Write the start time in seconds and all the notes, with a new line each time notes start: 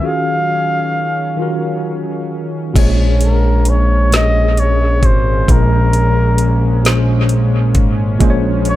Already playing: G#5
0.01 D#3 F#3 C#4 F4 F#4 F5
0.05 G#4 F5
1.37 D#3 C#4 F4
1.41 F#4 A#4
2.74 A#1 A#2 G#3 A#3 C#4, kick, closed hi-hat, crash
2.79 C#5
3.21 A#4, closed hi-hat
3.65 C#5, closed hi-hat
4.10 A#2 G#3 C#4, snare, closed hi-hat
4.14 G4 D#5
4.21 G#4
4.57 C#5, closed hi-hat
5.03 G#1 C5, kick, closed hi-hat
5.47 A#1 A#2 G#3 C#4, kick, closed hi-hat
5.51 A#4 C5
5.93 closed hi-hat
6.38 closed hi-hat
6.83 A#2 G#3 C#4, snare, closed hi-hat
6.87 C5
7.29 closed hi-hat
7.75 G#1, kick, closed hi-hat
8.19 A#1 A#2 G#3 C#4, kick, closed hi-hat
8.23 C5
8.30 C#5
8.65 C#5, closed hi-hat